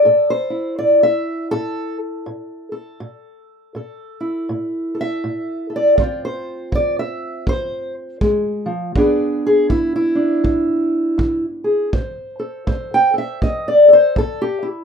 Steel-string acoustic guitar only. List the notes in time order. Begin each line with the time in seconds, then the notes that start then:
Already playing: E4 D5
0.05 A2 A4
0.30 C5
0.50 E4
0.78 A2 D5
1.03 E5
1.51 A2 A4
2.26 A2
2.72 A4
3.00 A2
3.75 A2 A4
4.21 E4
4.49 A2
4.95 A4
5.01 E5
5.24 A2
5.70 A4
5.76 D5
5.99 F3 C4 F4
6.25 C5
6.72 F3 D5
6.99 E5
7.47 F3 C5
8.21 G#3
8.66 F3
8.96 E3 B3 D4 G#4 D5
9.46 G#4
9.69 E3 E4
9.96 E4
10.15 D4
10.44 E3
11.18 E3
11.64 G#4
11.93 A2 C5
12.39 A4
12.67 A2 C5
12.94 G5
13.14 A4
13.18 E5
13.42 A2 D#5
13.68 D5
13.88 A4
13.93 C5
14.17 A2 A4
14.42 G4
14.63 E4